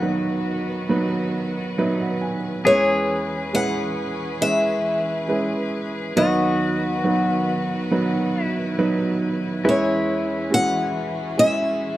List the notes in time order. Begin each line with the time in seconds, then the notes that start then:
Already playing: D#2 D#3 F#3 B3 D#4 F#4 B4 F#5
0.02 F#3 B3 D#4 B4
0.89 F#3 B3 D#4 B4
1.78 F#3 B3 D#4 B4 E5
2.01 F#5
2.21 G#5
2.65 E2 E3 G#3 C#4 E4 G#4 B4 C#5
3.53 G#3 C#4 E4 B4 F#5
4.41 G#3 C#4 E4 B4 E5
5.28 G#3 C#4 E4 B4
6.17 D#2 D#3 F#3 B3 D#4 F#4 B4 D#5
7.04 F#3 B3 D#4 B4
7.91 F#3 B3 D#4 B4
8.43 E4
8.78 F#3 B3 D#4 B4
9.64 E2 E3 G#3 C#4 E4 G#4 B4
9.69 C#5
10.50 G#3 C#4 E4 F#4 F#5
11.37 G#3 C#4 E4 G#4 E5